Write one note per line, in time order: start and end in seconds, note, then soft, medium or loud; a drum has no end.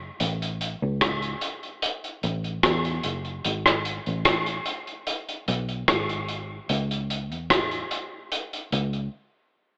0.20 0.74 A1 loud
0.20 closed hi-hat medium
0.42 closed hi-hat medium
0.61 closed hi-hat medium
0.82 1.34 C#2 medium
1.01 kick loud
1.01 cross-stick medium
1.01 closed hi-hat medium
1.22 closed hi-hat soft
1.41 closed hi-hat medium
1.63 closed hi-hat soft
1.82 closed hi-hat medium
2.04 closed hi-hat soft
2.23 2.58 A1 medium
2.23 closed hi-hat medium
2.44 closed hi-hat soft
2.63 2.99 E2 loud
2.63 kick loud
2.63 cross-stick loud
2.63 closed hi-hat medium
2.85 closed hi-hat soft
3.03 3.39 F#1 medium
3.03 closed hi-hat medium
3.25 closed hi-hat soft
3.44 3.99 G#1 loud
3.44 closed hi-hat medium
3.66 cross-stick medium
3.66 closed hi-hat medium
3.85 closed hi-hat medium
4.06 4.59 A1 medium
4.06 closed hi-hat soft
4.25 kick loud
4.25 cross-stick loud
4.25 closed hi-hat loud
4.46 closed hi-hat medium
4.66 closed hi-hat medium
4.87 closed hi-hat soft
5.07 closed hi-hat medium
5.29 closed hi-hat soft
5.48 5.83 B1 medium
5.48 closed hi-hat medium
5.69 closed hi-hat soft
5.88 6.58 G#1 loud
5.88 kick loud
5.88 cross-stick loud
5.88 closed hi-hat medium
6.09 closed hi-hat soft
6.28 closed hi-hat medium
6.69 7.32 C#2 loud
6.69 closed hi-hat medium
6.91 closed hi-hat soft
7.10 closed hi-hat medium
7.32 7.83 E2 medium
7.32 closed hi-hat soft
7.50 kick loud
7.50 cross-stick medium
7.50 closed hi-hat medium
7.71 closed hi-hat medium
7.91 closed hi-hat medium
8.32 closed hi-hat medium
8.53 closed hi-hat soft
8.72 9.07 C#2 medium
8.72 closed hi-hat medium
8.93 closed hi-hat soft